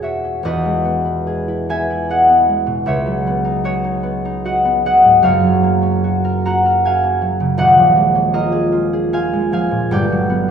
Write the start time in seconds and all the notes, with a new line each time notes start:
Already playing: E2 B2 G#3 B3 C#4 G#4 B4 B5 E6
0.02 F#4 C#5 E5
0.25 C#4
0.43 E1 E2 B4 D#5
0.65 G#3
0.85 B3
1.05 E4
1.27 G#4
1.48 E4
1.69 B3 E5 G#5
1.90 E4
2.09 G#4 D#5 F#5
2.29 B3
2.49 G#3
2.67 B2
2.86 C#2 C#5 E5
3.07 F#3
3.27 B3
3.44 D#4
3.64 F#4 G#4 C#5
3.84 D#4
4.03 B3
4.25 D#4
4.45 F#4 D#5 F#5
4.65 B3
4.85 F#3 D#5 F#5
5.04 G#2
5.22 F#1 F#2 C#5 F5
5.43 F#3
5.63 A#3
5.82 C#4
6.04 F#4
6.24 A#4
6.46 F#4 F#5 A#5
6.66 A#4
6.85 F#4 F5 G#5
7.04 A#3
7.22 F#3
7.40 C#3
7.58 D#1 D#2 D#5 F#5
7.78 F3
7.97 G#3
8.15 C#4
8.33 F4 A#4 D#5
8.52 G#4
8.72 F4
8.93 G#4
9.13 F4 F5 G#5
9.33 G#3
9.52 F3 F5 G#5
9.71 A#2
9.91 G1 G2 D5 G5
10.12 F#3
10.30 B3